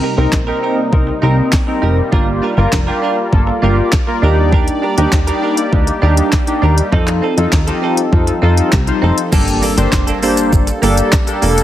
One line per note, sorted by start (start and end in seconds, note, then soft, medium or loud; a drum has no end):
0.00 2.10 C3 medium
0.00 4.19 G3 medium
0.00 2.10 A#3 medium
0.00 2.10 D#4 medium
0.00 0.13 D#4 medium
0.00 0.14 G4 medium
0.00 0.14 A#4 medium
0.17 0.27 C2 medium
0.17 0.39 C4 medium
0.17 0.39 D#4 medium
0.17 0.29 D#4 medium
0.17 0.29 G4 medium
0.17 0.28 A#4 medium
0.17 0.39 A#4 loud
0.32 0.51 A#1 medium
0.32 kick loud
0.32 snare medium
0.32 clap loud
0.47 0.79 C4 medium
0.47 0.79 D#4 medium
0.47 0.59 D#4 medium
0.47 0.59 G4 medium
0.47 0.58 A#4 medium
0.47 0.79 A#4 medium
0.62 0.76 D#4 medium
0.62 0.77 G4 medium
0.62 0.76 A#4 medium
0.77 muted clean electric guitar stroke soft
0.92 1.11 C2 loud
0.92 1.14 C4 medium
0.92 1.14 D#4 medium
0.92 1.14 A#4 medium
0.92 muted clean electric guitar stroke soft
0.92 kick loud
1.07 muted clean electric guitar stroke soft
1.22 1.41 C2 medium
1.22 1.54 C4 medium
1.22 1.36 D#4 medium
1.22 1.54 D#4 medium
1.22 1.37 G4 medium
1.22 1.54 A#4 loud
1.22 1.36 A#4 medium
1.37 muted clean electric guitar stroke soft
1.52 muted clean electric guitar stroke soft
1.52 kick loud
1.52 snare medium
1.52 clap loud
1.67 1.99 C4 medium
1.67 1.99 D#4 medium
1.67 1.99 A#4 medium
1.67 muted clean electric guitar stroke soft
1.82 2.01 F1 medium
1.82 1.96 D#4 medium
1.82 1.97 G4 medium
1.82 1.96 A#4 medium
1.97 muted clean electric guitar stroke soft
2.12 2.41 G1 loud
2.12 2.44 A#3 medium
2.12 2.26 D4 medium
2.12 2.44 F4 medium
2.12 4.20 F4 medium
2.12 2.27 F4 medium
2.12 2.44 G4 loud
2.12 4.20 A#4 medium
2.12 2.27 A#4 loud
2.12 6.89 D5 medium
2.12 kick loud
2.42 2.53 D4 medium
2.42 2.54 F4 medium
2.42 2.54 A#4 medium
2.57 2.67 G1 medium
2.57 2.79 A#3 medium
2.57 2.69 D4 medium
2.57 2.79 F4 medium
2.57 2.69 F4 medium
2.57 2.68 A#4 medium
2.57 2.79 A#4 medium
2.72 2.91 F1 loud
2.72 kick loud
2.72 snare medium
2.72 clap loud
2.87 3.19 A#3 medium
2.87 2.99 D4 medium
2.87 3.19 F4 medium
2.87 2.99 F4 medium
2.87 3.19 G4 loud
2.87 2.98 A#4 medium
3.02 3.16 D4 medium
3.02 3.17 F4 medium
3.02 3.16 A#4 medium
3.17 muted clean electric guitar stroke soft
3.32 3.51 G1 loud
3.32 3.54 A#3 medium
3.32 3.54 F4 medium
3.32 3.54 A4 medium
3.32 muted clean electric guitar stroke soft
3.32 kick loud
3.47 muted clean electric guitar stroke medium
3.62 3.81 G1 medium
3.62 3.94 A#3 medium
3.62 3.76 D4 medium
3.62 3.94 F4 medium
3.62 3.77 F4 medium
3.62 3.94 G4 medium
3.62 3.76 A#4 medium
3.77 muted clean electric guitar stroke soft
3.92 kick loud
3.92 snare medium
3.92 clap loud
4.07 4.21 A#3 medium
4.07 4.22 F4 medium
4.07 4.22 A#4 loud
4.07 muted clean electric guitar stroke medium
4.22 4.70 D#2 loud
4.22 6.90 G3 medium
4.22 6.90 A#3 medium
4.22 4.36 D4 medium
4.22 4.82 D4 medium
4.22 4.83 D#4 medium
4.22 6.90 G4 medium
4.22 4.83 G4 loud
4.22 4.37 G4 medium
4.22 4.36 A#4 loud
4.37 muted clean electric guitar stroke soft
4.52 4.66 D4 medium
4.52 4.67 G4 medium
4.52 4.67 A#4 loud
4.52 kick loud
4.52 swell medium
4.68 closed hi-hat soft
4.82 4.93 D4 medium
4.82 4.94 G4 medium
4.82 4.94 A#4 medium
4.97 5.07 D#2 medium
4.97 5.19 D4 medium
4.97 5.09 D4 medium
4.97 5.19 D#4 medium
4.97 5.19 G4 loud
4.97 5.09 G4 medium
4.97 5.08 A#4 medium
4.97 closed hi-hat medium
5.12 5.31 D#2 medium
5.12 kick loud
5.12 snare medium
5.12 clap loud
5.27 5.59 D4 medium
5.27 5.39 D4 medium
5.27 5.59 D#4 medium
5.27 5.59 G4 medium
5.27 5.39 G4 medium
5.27 5.38 A#4 medium
5.27 closed hi-hat medium
5.42 5.56 D4 medium
5.42 5.57 G4 medium
5.42 5.56 A#4 loud
5.57 muted clean electric guitar stroke soft
5.57 closed hi-hat medium
5.72 5.91 D2 loud
5.72 5.94 D4 medium
5.72 5.94 D#4 medium
5.72 5.94 G4 medium
5.72 muted clean electric guitar stroke soft
5.72 kick loud
5.87 muted clean electric guitar stroke soft
5.87 closed hi-hat medium
6.02 6.21 D#2 medium
6.02 6.16 D4 medium
6.02 6.34 D4 medium
6.02 6.34 D#4 medium
6.02 6.34 G4 loud
6.02 6.17 G4 medium
6.02 6.16 A#4 medium
6.17 muted clean electric guitar stroke soft
6.17 closed hi-hat medium
6.32 muted clean electric guitar stroke soft
6.32 kick loud
6.32 snare medium
6.32 clap loud
6.47 6.79 D4 medium
6.47 6.79 D#4 medium
6.47 6.79 G4 medium
6.47 muted clean electric guitar stroke soft
6.47 closed hi-hat soft
6.62 6.81 D#2 medium
6.62 6.76 D4 medium
6.62 6.77 G4 medium
6.62 6.76 A#4 loud
6.77 muted clean electric guitar stroke medium
6.77 closed hi-hat medium
6.92 7.21 F2 loud
6.92 9.30 F3 medium
6.92 7.06 C4 medium
6.92 9.30 C4 medium
6.92 7.24 D#4 medium
6.92 9.30 D#4 medium
6.92 7.07 D#4 loud
6.92 7.24 F4 medium
6.92 9.30 A4 medium
6.92 7.25 A4 medium
6.92 7.07 A4 medium
6.92 kick loud
7.07 clap medium
7.07 closed hi-hat soft
7.22 7.33 C4 medium
7.22 7.34 D#4 medium
7.22 7.34 A4 medium
7.37 7.47 F2 medium
7.37 7.49 C4 soft
7.37 7.59 D#4 medium
7.37 7.49 D#4 medium
7.37 7.59 F4 medium
7.37 7.59 A4 loud
7.37 closed hi-hat medium
7.52 7.71 D#2 medium
7.52 kick loud
7.52 snare medium
7.52 clap loud
7.67 7.79 C4 medium
7.67 7.99 D#4 medium
7.67 7.79 D#4 medium
7.67 7.99 F4 medium
7.67 8.00 G4 loud
7.67 7.78 A4 medium
7.67 closed hi-hat medium
7.82 7.96 C4 medium
7.82 7.97 D#4 medium
7.82 7.96 A4 loud
7.97 muted clean electric guitar stroke soft
7.97 closed hi-hat medium
8.12 8.31 F2 loud
8.12 8.34 D#4 medium
8.12 8.34 F4 medium
8.12 8.34 A4 medium
8.12 muted clean electric guitar stroke soft
8.12 kick loud
8.27 muted clean electric guitar stroke soft
8.27 closed hi-hat medium
8.42 8.61 F2 medium
8.42 8.56 C4 medium
8.42 8.74 D#4 medium
8.42 8.57 D#4 medium
8.42 8.74 F4 medium
8.42 8.74 A4 loud
8.42 8.56 A4 medium
8.57 muted clean electric guitar stroke soft
8.57 closed hi-hat medium
8.72 8.92 C2 loud
8.72 muted clean electric guitar stroke soft
8.72 kick loud
8.72 snare medium
8.72 clap loud
8.87 9.19 D#4 medium
8.87 9.19 F4 medium
8.87 9.19 C5 loud
8.87 muted clean electric guitar stroke medium
8.87 closed hi-hat soft
9.02 9.12 F1 medium
9.02 9.16 C4 medium
9.02 9.17 D#4 medium
9.02 9.16 A4 medium
9.17 muted clean electric guitar stroke soft
9.17 closed hi-hat medium
9.32 9.61 G1 loud
9.32 11.64 G3 medium
9.32 9.46 A#3 medium
9.32 9.64 A#3 medium
9.32 11.64 A#3 loud
9.32 9.64 D4 medium
9.32 11.64 D4 medium
9.32 9.47 D4 medium
9.32 9.64 G4 medium
9.32 11.64 A4 medium
9.32 9.64 A4 loud
9.32 9.47 A4 medium
9.32 kick loud
9.32 crash loud
9.32 impact medium
9.32 shaker medium
9.48 closed hi-hat soft
9.48 shaker soft
9.62 9.73 A#3 medium
9.62 9.74 D4 medium
9.62 9.74 A4 medium
9.62 open hi-hat medium
9.62 shaker soft
9.77 9.87 G1 medium
9.77 10.09 A#3 medium
9.77 9.89 A#3 medium
9.77 10.09 D4 medium
9.77 9.89 D4 medium
9.77 10.09 G4 medium
9.77 9.88 A4 medium
9.77 10.09 C5 loud
9.77 closed hi-hat medium
9.77 shaker medium
9.92 10.11 F1 medium
9.92 muted clean electric guitar stroke soft
9.92 kick loud
9.92 snare medium
9.92 clap loud
9.92 shaker medium
10.07 10.19 A#3 medium
10.07 10.19 D4 medium
10.07 10.18 A4 medium
10.07 closed hi-hat medium
10.07 shaker medium
10.22 10.36 A#3 medium
10.22 10.65 A#3 medium
10.22 10.65 D4 medium
10.22 10.37 D4 medium
10.22 10.65 G4 medium
10.22 10.36 A4 medium
10.22 10.65 C5 loud
10.22 open hi-hat medium
10.22 shaker soft
10.37 muted clean electric guitar stroke soft
10.37 closed hi-hat medium
10.37 shaker loud
10.52 10.71 G1 loud
10.52 muted clean electric guitar stroke soft
10.52 kick loud
10.52 shaker medium
10.67 muted clean electric guitar stroke soft
10.67 closed hi-hat medium
10.67 shaker medium
10.82 11.01 G1 medium
10.82 10.96 A#3 medium
10.82 11.14 A#3 medium
10.82 11.14 D4 medium
10.82 10.97 D4 loud
10.82 11.14 G4 medium
10.82 11.15 A4 loud
10.82 10.96 A4 loud
10.82 open hi-hat medium
10.82 shaker soft
10.97 muted clean electric guitar stroke soft
10.97 closed hi-hat medium
10.97 shaker medium
11.12 muted clean electric guitar stroke soft
11.12 kick loud
11.12 snare medium
11.12 clap loud
11.12 shaker medium
11.27 11.59 A#3 medium
11.27 11.59 D4 medium
11.27 11.59 G4 medium
11.27 11.59 A4 loud
11.27 muted clean electric guitar stroke soft
11.27 closed hi-hat medium
11.27 shaker medium
11.42 11.61 F1 medium
11.42 11.56 A#3 medium
11.42 11.57 D4 medium
11.42 11.56 A4 medium
11.42 open hi-hat medium
11.42 shaker soft
11.57 muted clean electric guitar stroke medium
11.57 closed hi-hat medium
11.57 shaker medium